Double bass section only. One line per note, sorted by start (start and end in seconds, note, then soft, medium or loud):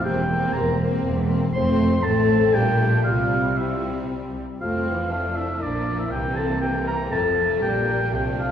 0.05 0.49 E1 medium
0.56 0.99 E1 medium
1.06 1.48 E1 medium
1.55 2.01 F1 medium
2.05 2.55 A1 medium
2.55 3.07 A#1 medium
3.07 4.41 C2 medium
4.61 5.58 F1 medium
5.62 6.12 A#1 medium
6.12 7.10 C2 medium
7.13 7.62 F1 medium
7.63 8.11 A#1 medium
8.12 8.52 C2 medium